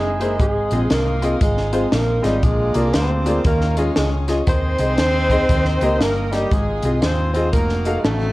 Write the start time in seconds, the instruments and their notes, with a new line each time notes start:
Already playing: fingered electric bass F#1, grand piano C3, tenor saxophone G#3, saxophone section D#4 E4 G#4, string section A#5 C6 E6
0.20 tenor saxophone G#3, grand piano A#3 E4 G#4 C5, closed hi-hat
0.39 fingered electric bass G#1, grand piano G#2, saxophone section C4 D#4 G#4, string section F5 D#6, kick, closed hi-hat
0.71 fingered electric bass A#1, grand piano C4 F4 G#4 D#5, closed hi-hat
0.90 fingered electric bass C2, tenor saxophone A#3, saxophone section D#4 F4 A#4, snare, closed hi-hat
1.22 grand piano C4 F4 G#4 D#5, closed hi-hat
1.41 fingered electric bass G#1, tenor saxophone G#3, saxophone section C4 D#4 G#4, kick, closed hi-hat
1.57 snare
1.73 tenor saxophone G#3, grand piano C4 F4 G#4 C5, closed hi-hat
1.92 fingered electric bass A#1, tenor saxophone A#3, saxophone section A#4, snare, closed hi-hat
2.22 fingered electric bass G#1, tenor saxophone G3, grand piano C4 F4 G#4 D#5, saxophone section G4, snare, closed hi-hat
2.42 fingered electric bass A#1, grand piano A#2, tenor saxophone G#3, saxophone section D4 F4 G#4, string section F5 A#5 D6, kick, closed hi-hat
2.74 fingered electric bass C2, grand piano A#3 F4 G#4 D5, tenor saxophone A#3, closed hi-hat
2.94 fingered electric bass D2, tenor saxophone C4, saxophone section F4 G#4 C5, snare, closed hi-hat
3.26 grand piano A#3 F4 G#4 D5, closed hi-hat
3.45 fingered electric bass D#2, grand piano D#3, tenor saxophone A#3, saxophone section C#4 F4 A#4, string section C#6 D#6, kick, closed hi-hat
3.61 snare
3.77 tenor saxophone G#3, grand piano C#4 F4 G#4 D#5, saxophone section G#4, closed hi-hat
3.96 fingered electric bass C#2, tenor saxophone G#3, saxophone section G#4, snare, closed hi-hat
4.28 grand piano C#4 F4 G#4 D#5, snare, closed hi-hat
4.46 fingered electric bass D#2, grand piano D#3, tenor saxophone C4, saxophone section D#4 G#4 C5, string section D#5 G#5 C6, kick, closed hi-hat
4.78 fingered electric bass C2, grand piano C4 D#4 G#4 D#5, closed hi-hat
4.98 fingered electric bass D#2, snare, closed hi-hat
5.30 grand piano C4 D#4 G#4 D#5, kick, closed hi-hat
5.49 fingered electric bass D#2, grand piano D#3, string section G5 A#5, kick, closed hi-hat
5.65 snare
5.81 fingered electric bass C#2, grand piano A#3 D#4 G4 D#5, closed hi-hat
6.00 fingered electric bass G1, tenor saxophone A#3, saxophone section A#4, snare, closed hi-hat
6.32 tenor saxophone G3, grand piano A#3 D#4 G4 D#5, saxophone section G4, snare, closed hi-hat
6.51 fingered electric bass G#1, grand piano G#2, tenor saxophone G#3, saxophone section C4 F4 G#4, string section F5 G#5 C6, kick, closed hi-hat
6.82 fingered electric bass C2, grand piano C4 F4 G#4 D#5, closed hi-hat
7.02 fingered electric bass D#2, tenor saxophone C4, saxophone section D#4 F4 C5, snare, closed hi-hat
7.33 tenor saxophone C4, grand piano C4 F4 G#4 D#5, closed hi-hat
7.52 fingered electric bass F1, tenor saxophone A#3, saxophone section D#4 F#4 A#4, string section F#5 A5, kick, closed hi-hat
7.69 snare
7.85 grand piano D#4 F#4 A4 F5, closed hi-hat
8.00 tenor saxophone G#3 A3
8.05 fingered electric bass A1, saxophone section C4 D#4 A4, snare, closed hi-hat